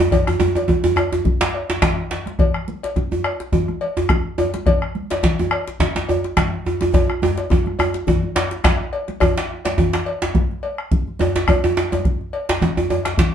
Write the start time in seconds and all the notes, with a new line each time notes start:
0.00 high conga
0.11 bombo rim, bombo low, cowbell, djembe tone, low conga, djembe bass
0.27 bombo rim, djembe tone
0.40 djembe tone, high conga
0.55 cowbell, djembe slap, djembe tone, high conga
0.68 bombo rim, bombo low, high conga, djembe tone, low conga
0.83 high conga, djembe tone
0.96 bombo rim, cowbell, djembe tone
1.12 djembe slap, djembe tone
1.25 bombo low, djembe bass, low conga
1.41 bombo rim, djembe slap, high conga
1.54 cowbell
1.70 djembe slap
1.82 bombo rim, bombo low, djembe slap, high conga, djembe tone, low conga
2.11 djembe slap, high conga
2.26 bombo rim, djembe slap, high conga
2.39 bombo rim, bombo low, cowbell, low conga, djembe bass
2.54 bombo rim
2.68 high conga
2.83 cowbell, djembe slap, high conga
2.96 bombo rim, bombo low, high conga, djembe tone, low conga
3.11 high conga, djembe tone
3.24 bombo rim, cowbell, djembe slap
3.40 bombo rim, djembe slap
3.52 bombo low, djembe tone, djembe bass, low conga
3.68 bombo rim, djembe slap, high conga
3.81 cowbell
3.97 djembe slap, djembe tone
4.09 bombo rim, bombo low, djembe slap, high conga, djembe tone, low conga
4.38 cowbell, djembe tone, high conga
4.54 bombo rim, djembe slap, high conga
4.66 bombo rim, bombo low, cowbell, low conga, djembe bass
4.82 bombo rim
4.95 high conga
5.10 cowbell, djembe slap, high conga
5.23 bombo rim, bombo low, djembe slap, djembe tone, high conga, low conga
5.39 high conga, djembe tone
5.51 bombo rim, cowbell, djembe slap
5.67 bombo rim, djembe slap
5.80 bombo low, djembe slap, djembe bass, low conga
5.96 bombo rim, djembe slap, high conga
6.09 cowbell, djembe tone
6.24 djembe slap
6.37 bombo rim, bombo low, djembe slap, high conga, djembe tone, low conga
6.65 high conga, djembe tone
6.81 bombo rim, djembe slap, high conga, djembe tone
6.94 bombo low, cowbell, djembe tone, djembe bass, low conga
7.10 bombo rim, djembe slap
7.22 high conga, djembe tone
7.37 cowbell, djembe slap, high conga
7.50 bombo low, djembe tone, low conga
7.66 bombo rim, high conga
7.79 bombo rim, cowbell, djembe tone
7.94 djembe slap, high conga
8.07 bombo rim, bombo low, high conga, djembe tone, djembe bass, low conga
8.22 djembe slap, high conga
8.36 cowbell, djembe slap
8.51 djembe slap
8.64 bombo rim, bombo low, djembe slap, djembe tone, high conga, low conga
8.93 cowbell
9.08 djembe slap, high conga
9.20 bombo rim, bombo low, cowbell, djembe tone, djembe bass, low conga
9.38 djembe slap
9.65 cowbell, djembe slap, high conga
9.78 bombo rim, bombo low, djembe slap, djembe tone, low conga
9.93 bombo rim, djembe slap
10.06 cowbell, djembe slap
10.22 bombo rim, djembe slap, djembe tone
10.35 bombo low, djembe slap, high conga, low conga, djembe bass
10.51 djembe slap
10.63 cowbell, high conga
10.78 bombo rim
10.91 bombo low, low conga
11.07 djembe slap, high conga
11.19 cowbell, high conga, djembe tone
11.36 djembe slap, djembe tone
11.48 bombo rim, bombo low, cowbell, djembe tone, low conga, djembe bass
11.64 djembe tone
11.77 djembe slap
11.92 cowbell, djembe slap, high conga, djembe tone
12.05 bombo rim, bombo low, djembe slap, low conga
12.21 djembe slap
12.33 cowbell, djembe slap
12.49 bombo rim, djembe slap, djembe tone
12.62 bombo low, djembe slap, high conga, low conga, djembe bass
12.77 djembe slap, djembe tone
12.90 cowbell, djembe tone, high conga
13.05 bombo rim, djembe slap
13.18 bombo low, djembe slap, low conga